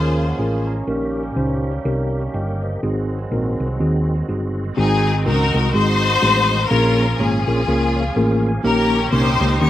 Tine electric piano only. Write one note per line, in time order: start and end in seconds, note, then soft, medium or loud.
0.00 0.25 C#4 medium
0.00 0.25 F4 medium
0.00 0.25 G#4 medium
0.00 0.25 A#4 medium
0.18 0.28 F5 medium
0.29 0.38 F#5 medium
0.39 0.73 C#4 medium
0.39 0.74 F4 medium
0.39 0.74 G#4 medium
0.39 0.74 A#4 medium
0.39 0.65 G#5 medium
0.67 0.86 A#5 medium
0.87 1.61 A#2 medium
0.87 1.22 C#4 medium
0.87 1.22 D#4 medium
0.87 1.22 G4 medium
0.87 1.22 A#4 medium
1.36 1.71 C#4 medium
1.36 1.71 D#4 medium
1.36 1.71 G4 medium
1.36 1.71 C5 medium
1.85 2.20 C#4 medium
1.85 2.20 D#4 medium
1.85 2.20 G4 medium
1.85 2.20 A#4 medium
2.34 2.61 D#5 soft
2.34 2.61 G5 medium
2.62 3.09 C5 soft
2.62 3.09 D#5 medium
2.83 3.56 G#2 medium
2.83 3.17 C4 medium
2.83 3.17 D#4 medium
2.83 3.17 F#4 medium
2.83 3.18 G#4 medium
3.32 3.66 C4 medium
3.32 3.66 D#4 medium
3.32 3.66 F#4 medium
3.32 3.66 A#4 medium
3.80 4.15 C4 medium
3.80 4.15 D#4 medium
3.80 4.15 F#4 medium
3.80 4.15 G#4 medium
4.28 4.63 C4 medium
4.28 4.63 D#4 medium
4.28 4.63 F#4 medium
4.28 4.63 G#4 medium
4.77 5.50 G#2 medium
4.77 5.12 G#3 loud
4.77 5.12 C4 medium
4.77 5.12 D#4 medium
4.77 5.12 F#4 medium
4.77 5.12 G#4 loud
5.25 5.44 G#3 medium
5.25 5.44 C4 medium
5.25 5.44 D#4 medium
5.25 5.44 F#4 medium
5.25 5.44 A#4 medium
5.54 5.67 G#3 medium
5.54 5.67 C4 medium
5.54 5.67 D#4 medium
5.54 5.67 F#4 medium
5.54 5.67 A#4 medium
5.74 6.08 G#3 medium
5.74 6.08 C4 medium
5.74 6.09 D#4 medium
5.74 6.09 F#4 medium
5.74 6.09 G#4 medium
6.22 6.57 G#3 medium
6.22 6.57 C4 medium
6.22 6.57 D#4 medium
6.22 6.57 F#4 medium
6.22 6.57 G#4 medium
6.71 7.43 A#2 medium
6.71 7.05 A#3 loud
6.71 7.05 C#4 medium
6.71 7.05 F4 medium
6.71 7.05 G#4 medium
6.71 7.05 A#4 loud
7.20 7.38 A#3 medium
7.20 7.38 C#4 medium
7.20 7.38 F4 medium
7.20 7.38 G#4 medium
7.20 7.38 C#5 medium
7.47 7.61 A#3 medium
7.47 7.61 C#4 medium
7.47 7.61 F4 medium
7.47 7.61 G#4 medium
7.47 7.61 A#4 medium
7.68 8.02 A#3 medium
7.68 8.02 C#4 medium
7.68 8.02 F4 medium
7.68 8.02 G#4 medium
7.68 8.02 A#4 medium
7.96 8.00 C#5 medium
8.00 8.15 F5 medium
8.16 8.50 A#3 medium
8.16 8.50 C#4 medium
8.16 8.51 F4 medium
8.16 8.51 G#4 medium
8.16 8.51 A#4 medium
8.16 8.46 G#5 medium
8.49 8.63 G#5 medium
8.64 9.37 A#2 medium
8.64 8.98 A#3 loud
8.64 8.98 C#4 medium
8.64 8.98 D#4 medium
8.64 8.99 G4 medium
8.64 8.99 A#4 loud
9.12 9.31 A#3 medium
9.12 9.31 C#4 medium
9.12 9.31 D#4 medium
9.12 9.31 G4 medium
9.12 9.31 A#4 medium
9.41 9.54 A#3 medium
9.41 9.54 C#4 medium
9.41 9.54 D#4 medium
9.41 9.54 G4 medium
9.41 9.54 C5 medium
9.61 9.70 A#3 medium
9.61 9.70 C#4 medium
9.61 9.70 D#4 medium
9.61 9.70 G4 medium
9.61 9.70 C6 medium